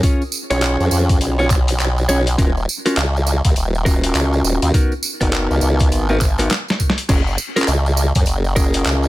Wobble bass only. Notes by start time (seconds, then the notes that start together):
0.51 B1
0.80 F2
0.91 F2
1.21 B1
2.09 B1
2.39 D#1
2.97 C#2
3.45 D#2
3.56 D#1
4.15 C#2
4.44 D#1
4.62 D#2
5.21 F#1
5.50 C#2
5.62 C#2
5.91 G#1
7.09 F#1
7.68 C#2
8.15 F#2
8.27 F#1
8.85 C#2